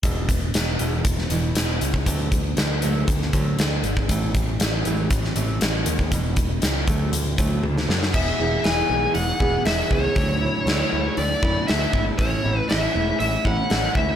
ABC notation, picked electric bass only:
X:1
M:4/4
L:1/8
Q:1/4=119
K:Emix
V:1 name="Picked electric bass" clef=bass
E,,,2 E,,, E,,, E,,, E,,, E,,, C,, | D,,2 D,,2 D,, D,, D,, G,,, | A,,,2 A,,, A,,, A,,, A,,, A,,, ^D,, | E,,,2 C,, D,, D,, D,, D,, F,, |
E,,, E,,, E,,, B,,, E,,, E,,, E,,, C,, | D,,2 D,, D,, D,, F,, D,, G,,, | A,,, A,,, A,,, E,,, A,,, A,,, A,,, D,, |]